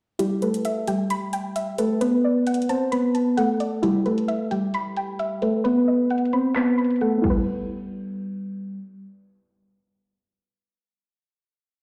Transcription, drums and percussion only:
0.19 closed hi-hat
0.42 closed hi-hat
0.54 closed hi-hat
0.65 closed hi-hat
0.88 closed hi-hat
1.10 closed hi-hat
1.33 closed hi-hat
1.56 closed hi-hat
1.78 closed hi-hat
2.01 closed hi-hat
2.47 closed hi-hat
2.54 closed hi-hat
2.62 closed hi-hat
2.69 closed hi-hat
2.92 closed hi-hat
3.15 closed hi-hat
3.38 closed hi-hat
3.60 closed hi-hat
3.83 closed hi-hat
4.06 closed hi-hat
4.18 closed hi-hat
4.28 closed hi-hat
4.51 closed hi-hat
4.74 closed hi-hat
4.97 closed hi-hat
5.19 closed hi-hat
5.42 closed hi-hat
5.65 closed hi-hat
6.10 closed hi-hat
6.18 closed hi-hat
6.25 closed hi-hat
6.33 closed hi-hat
6.56 clap, closed hi-hat
6.78 closed hi-hat
6.84 closed hi-hat
6.90 closed hi-hat
6.96 closed hi-hat
7.01 closed hi-hat
7.24 kick, crash

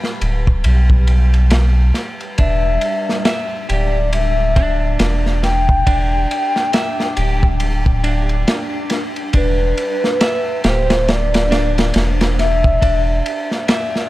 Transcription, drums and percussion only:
0.04 snare
0.21 ride
0.47 kick
0.64 ride
0.90 kick
1.07 ride
1.34 ride
1.50 snare, ride
1.94 snare, ride
2.20 ride
2.38 kick, ride
2.81 ride
3.09 snare
3.25 snare, ride
3.69 ride
4.13 ride
4.56 kick, ride
4.99 snare, ride
5.26 snare
5.43 snare, ride
5.69 kick
5.87 kick, ride
6.31 ride
6.56 snare
6.73 snare, ride
7.00 snare
7.17 ride
7.43 kick
7.60 ride
7.86 kick
8.04 ride
8.29 ride
8.48 snare, ride
8.90 snare, ride
9.16 ride
9.33 kick, ride
9.77 ride
10.04 snare
10.21 snare, ride
10.64 snare, ride
10.90 snare, ride
11.08 snare, ride
11.34 snare, ride
11.52 snare, ride
11.78 snare, ride
11.94 snare, ride
12.21 snare, ride
12.39 snare, ride
12.64 kick
12.82 kick, ride
13.26 ride
13.51 snare
13.68 snare, ride
13.96 snare

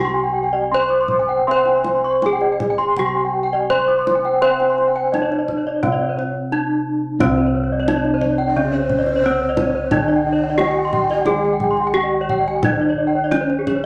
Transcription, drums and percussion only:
0.89 kendang slap
1.08 kendang slap, kendang low
1.65 kendang slap
1.84 kendang slap, kendang high
2.22 kendang slap, kendang high
2.41 kendang slap
2.60 kendang slap, kendang high, kendang low
2.79 kendang slap
2.96 kendang low
3.70 kendang low
3.88 kendang slap
4.07 kendang slap, kendang high
4.25 kendang slap
4.60 kendang slap
4.78 kendang slap
5.14 kendang slap, kendang high
5.32 kendang slap
5.48 kendang slap, kendang low
5.83 kendang high, kendang low
6.19 kendang slap
7.20 kendang high, kendang low
7.37 kendang slap
7.88 kendang high
8.05 kendang slap
8.21 kendang low
8.38 kendang slap
8.89 kendang low
9.06 kendang slap
9.57 kendang high, kendang low
9.91 kendang high, kendang low
10.09 kendang slap
10.59 kendang high
10.76 kendang slap
10.93 kendang low
11.10 kendang slap
11.26 kendang high
11.60 kendang low
11.77 kendang slap
12.29 kendang low
12.63 kendang high, kendang low
12.80 kendang slap
13.32 kendang high
13.50 kendang slap
13.67 kendang low

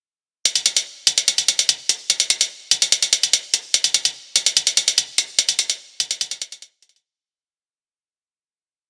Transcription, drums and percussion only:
0.45 closed hi-hat
0.55 closed hi-hat
0.66 closed hi-hat
0.77 closed hi-hat
1.07 closed hi-hat
1.18 closed hi-hat
1.28 closed hi-hat
1.38 closed hi-hat
1.48 closed hi-hat
1.59 closed hi-hat
1.69 closed hi-hat
1.89 closed hi-hat
2.10 closed hi-hat
2.20 closed hi-hat
2.30 closed hi-hat
2.41 closed hi-hat
2.71 closed hi-hat
2.82 closed hi-hat
2.92 closed hi-hat
3.02 closed hi-hat
3.13 closed hi-hat
3.23 closed hi-hat
3.33 closed hi-hat
3.54 closed hi-hat
3.74 closed hi-hat
3.84 closed hi-hat
3.94 closed hi-hat
4.05 closed hi-hat
4.36 closed hi-hat
4.46 closed hi-hat
4.57 closed hi-hat
4.67 closed hi-hat
4.77 closed hi-hat
4.88 closed hi-hat
4.98 closed hi-hat
5.18 closed hi-hat
5.39 closed hi-hat
5.49 closed hi-hat
5.59 closed hi-hat
5.70 closed hi-hat
6.00 closed hi-hat
6.11 closed hi-hat
6.21 closed hi-hat
6.31 closed hi-hat
6.42 closed hi-hat
6.52 closed hi-hat
6.62 closed hi-hat
6.82 closed hi-hat
6.89 closed hi-hat
6.96 closed hi-hat

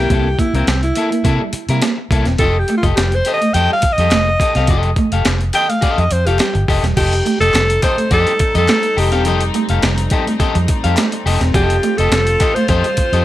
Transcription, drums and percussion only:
0.10 kick, closed hi-hat
0.39 kick, closed hi-hat
0.55 closed hi-hat
0.67 snare, closed hi-hat
0.83 closed hi-hat
0.95 closed hi-hat
1.12 closed hi-hat
1.25 kick, closed hi-hat
1.53 closed hi-hat
1.69 closed hi-hat
1.82 snare, closed hi-hat
2.11 kick, closed hi-hat
2.25 snare, closed hi-hat
2.38 kick, closed hi-hat
2.68 closed hi-hat
2.83 kick, closed hi-hat
2.97 snare, clap, closed hi-hat
3.12 closed hi-hat
3.25 closed hi-hat
3.42 closed hi-hat
3.54 closed hi-hat
3.82 kick, closed hi-hat
3.98 closed hi-hat
4.11 snare, clap, closed hi-hat
4.40 kick, closed hi-hat
4.55 snare, closed hi-hat
4.67 kick, closed hi-hat
4.83 closed hi-hat
4.96 kick, closed hi-hat
5.12 closed hi-hat
5.25 snare, clap, closed hi-hat
5.41 closed hi-hat
5.53 clap, closed hi-hat
5.70 closed hi-hat
5.82 kick, closed hi-hat
5.98 closed hi-hat
6.11 closed hi-hat
6.27 closed hi-hat
6.38 snare, clap, closed hi-hat
6.55 closed hi-hat
6.68 kick, open hi-hat
6.84 snare, closed hi-hat
6.97 kick, closed hi-hat, crash
7.13 closed hi-hat
7.26 closed hi-hat
7.42 closed hi-hat
7.54 snare, clap, closed hi-hat
7.70 closed hi-hat
7.82 kick, clap, closed hi-hat
7.98 closed hi-hat
8.11 kick, closed hi-hat
8.27 closed hi-hat
8.39 kick, closed hi-hat
8.55 closed hi-hat
8.68 snare, clap, closed hi-hat
8.83 closed hi-hat
8.98 open hi-hat
9.12 snare, closed hi-hat
9.25 closed hi-hat
9.41 closed hi-hat
9.54 closed hi-hat
9.69 closed hi-hat
9.83 snare, clap, closed hi-hat
9.98 closed hi-hat
10.10 kick, closed hi-hat
10.27 closed hi-hat
10.40 kick, closed hi-hat
10.55 closed hi-hat
10.68 kick, closed hi-hat
10.84 closed hi-hat
10.96 snare, clap, closed hi-hat
11.12 closed hi-hat
11.27 open hi-hat
11.41 snare, closed hi-hat
11.54 kick, closed hi-hat
11.70 closed hi-hat
11.83 closed hi-hat
11.98 closed hi-hat
12.12 snare, clap, closed hi-hat
12.27 closed hi-hat
12.40 kick, clap, closed hi-hat
12.56 closed hi-hat
12.68 kick, closed hi-hat
12.84 closed hi-hat
12.97 kick, closed hi-hat
13.13 closed hi-hat

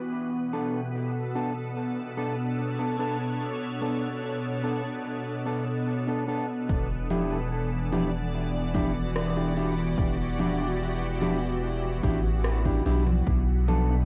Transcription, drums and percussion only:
6.69 kick
7.10 closed hi-hat, low conga
7.93 closed hi-hat, low conga
8.75 kick, closed hi-hat, low conga
9.16 cross-stick
9.57 closed hi-hat
9.98 kick
10.39 closed hi-hat, low conga
11.22 closed hi-hat, low conga
12.03 kick, closed hi-hat
12.44 cross-stick
12.65 kick
12.86 closed hi-hat
13.07 low conga
13.27 kick
13.68 closed hi-hat, low conga

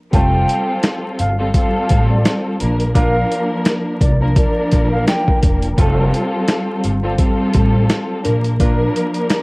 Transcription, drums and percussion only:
0.13 kick, closed hi-hat
0.49 closed hi-hat
0.83 snare, closed hi-hat
1.19 closed hi-hat
1.54 kick, closed hi-hat
1.89 kick, closed hi-hat
2.25 snare, closed hi-hat
2.60 closed hi-hat
2.80 closed hi-hat
2.95 kick, closed hi-hat
3.32 closed hi-hat
3.65 snare, closed hi-hat
4.01 kick, closed hi-hat
4.36 kick, closed hi-hat
4.71 kick, closed hi-hat
5.07 snare, closed hi-hat
5.28 kick
5.43 kick, closed hi-hat
5.62 closed hi-hat
5.78 kick, closed hi-hat
6.14 closed hi-hat
6.48 snare, closed hi-hat
6.84 closed hi-hat
7.18 kick, closed hi-hat
7.54 kick, closed hi-hat
7.90 snare, closed hi-hat
8.25 closed hi-hat
8.44 closed hi-hat
8.60 kick, closed hi-hat
8.96 closed hi-hat
9.14 closed hi-hat
9.30 snare, closed hi-hat

